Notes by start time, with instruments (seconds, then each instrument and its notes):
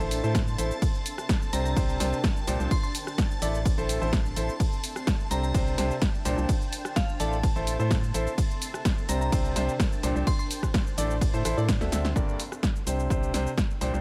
Already playing: ambient pad C4 D4 E5 C6, synth bell A5, string machine A5
0.00 fm bass A1, upright piano A3 E4 A4 C5, shaker
0.11 open hi-hat, shaker
0.23 fm bass A2, upright piano A3 E4 A4 C5, shaker
0.35 kick, snare, ride, shaker
0.48 shaker
0.58 fm bass A1, upright piano E4 A4 C5, open hi-hat, shaker
0.71 shaker
0.82 ambient pad D4, kick, ride, shaker
0.95 shaker
1.06 open hi-hat, shaker
1.14 ambient pad G5, cross-stick
1.18 shaker
1.29 kick, snare, ride, shaker
1.42 shaker
1.53 fm bass C2, upright piano C3 D4 G4 C5, synth bell A#5, open hi-hat, shaker
1.65 synth bell A#5, shaker
1.76 fm bass C2, upright piano C3 D4 G4 C5, kick, ride, shaker
1.89 shaker
2.00 fm bass C2, upright piano C3 D4 G4 C5, snare, open hi-hat, shaker
2.06 ambient pad C6
2.13 shaker
2.24 kick, snare, ride, shaker
2.37 shaker
2.47 fm bass C2, upright piano A#2 D4 G4 C5, open hi-hat, shaker
2.60 fm bass C2, upright piano A#2 D4 G4 C5, shaker
2.71 synth bell C6, kick, ride, shaker
2.83 synth bell C6, shaker
2.95 open hi-hat, shaker
3.07 cross-stick, shaker
3.18 kick, snare, ride, shaker
3.31 shaker
3.42 fm bass A1, upright piano A3 E4 A4 D5, ambient pad C4, open hi-hat, shaker
3.55 shaker
3.65 kick, ride, shaker
3.78 fm bass A1, upright piano A3 E4 A4 C5, shaker
3.89 open hi-hat, shaker
4.01 fm bass A1, upright piano A3 E4 A4 C5, shaker
4.13 kick, snare, ride, shaker
4.26 shaker
4.36 fm bass A1, upright piano E4 A4 C5, open hi-hat, shaker
4.49 shaker
4.60 ambient pad D4, kick, ride, shaker
4.73 shaker
4.84 open hi-hat, shaker
4.92 ambient pad G5, cross-stick, shaker
5.07 kick, snare, ride, shaker
5.20 shaker
5.31 fm bass C2, upright piano C3 D4 G4 C5, synth bell A#5, open hi-hat, shaker
5.43 synth bell A#5, shaker
5.54 fm bass C2, upright piano C3 D4 G4 C5, kick, ride, shaker
5.67 shaker
5.78 fm bass C2, upright piano C3 D4 G4 C5, snare, open hi-hat, shaker
5.84 ambient pad C6
5.91 shaker
6.02 kick, snare, ride, shaker
6.14 shaker
6.25 fm bass C2, upright piano A#2 D4 G4 C5, open hi-hat, shaker
6.38 fm bass C2, upright piano A#2 D4 G4 C5, shaker
6.49 kick, ride, shaker
6.62 shaker
6.73 open hi-hat, shaker
6.85 cross-stick, shaker
6.96 synth bell F5, kick, snare, ride, shaker
7.09 shaker
7.20 fm bass A1, upright piano A3 E4 A4 D5, ambient pad C4, synth bell A5, open hi-hat, shaker
7.33 shaker
7.40 ambient pad E5, kick, ride
7.44 shaker
7.56 fm bass A1, upright piano A3 E4 A4 C5, shaker
7.67 open hi-hat, shaker
7.79 fm bass A2, upright piano A3 E4 A4 C5, shaker
7.91 kick, snare, ride, shaker
8.04 shaker
8.14 fm bass A1, upright piano E4 A4 C5, open hi-hat, shaker
8.27 shaker
8.38 ambient pad D4, kick, ride, shaker
8.51 shaker
8.58 ambient pad G5, open hi-hat, shaker
8.74 cross-stick, shaker
8.85 kick, snare, ride, shaker
8.98 shaker
9.09 fm bass C2, upright piano C3 D4 G4 C5, synth bell A#5, open hi-hat, shaker
9.21 synth bell A#5, shaker
9.32 fm bass C2, upright piano C3 D4 G4 C5, kick, ride, shaker
9.45 shaker
9.56 fm bass C2, upright piano C3 D4 G4 C5, snare, open hi-hat, shaker
9.62 ambient pad C6
9.69 shaker
9.80 kick, snare, ride, shaker
9.92 shaker
10.03 fm bass C2, upright piano A#2 D4 G4 C5, open hi-hat, shaker
10.16 fm bass C2, upright piano A#2 D4 G4 C5, shaker
10.27 synth bell C6, kick, ride, shaker
10.39 synth bell C6, shaker
10.51 open hi-hat, shaker
10.63 kick, cross-stick, shaker
10.74 kick, snare, ride, shaker
10.87 shaker
10.98 fm bass A1, upright piano A3 E4 A4 D5, open hi-hat, shaker
11.11 shaker
11.21 kick, ride, shaker
11.34 fm bass A2, upright piano A3 E4 A4 C5, shaker
11.45 fm bass A1, upright piano E4 A4 C5, cross-stick, open hi-hat, shaker
11.57 fm bass A2, upright piano E4 A4 D5, shaker
11.69 kick, snare, ride, shaker
11.81 fm bass D2, upright piano D3 C4 D4 F#4 A4 E5, snare, shaker
11.92 fm bass D2, upright piano C4 D4 F#4 A4 E5, snare, open hi-hat, shaker
12.05 snare, shaker
12.16 fm bass G1, upright piano G2 A#3 D4 G4 A4 D5, kick, shaker
12.29 shaker
12.40 open hi-hat, shaker
12.52 cross-stick, shaker
12.63 kick, snare, shaker
12.76 shaker
12.87 fm bass C2, upright piano C3 D4 G4 C5, open hi-hat, shaker
13.00 shaker
13.10 fm bass C2, upright piano C3 D4 G4 C5, kick, shaker
13.23 shaker
13.34 fm bass C2, upright piano C3 D4 G4 C5, snare, open hi-hat, shaker
13.47 shaker
13.58 kick, snare, shaker
13.70 shaker
13.81 fm bass C2, upright piano A#2 D4 G4 C5, open hi-hat, shaker
13.94 fm bass C2, upright piano A#2 D4 G4 C5, shaker